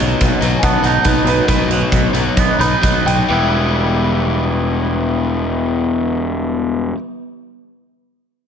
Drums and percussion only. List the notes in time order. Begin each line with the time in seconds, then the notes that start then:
0.00 closed hi-hat
0.21 kick, closed hi-hat
0.42 closed hi-hat
0.63 kick, closed hi-hat
0.84 closed hi-hat
1.04 kick, closed hi-hat
1.27 closed hi-hat
1.48 kick, closed hi-hat
1.71 closed hi-hat
1.92 kick, closed hi-hat
2.14 closed hi-hat
2.37 kick, closed hi-hat
2.61 closed hi-hat
2.83 kick, closed hi-hat
3.07 closed hi-hat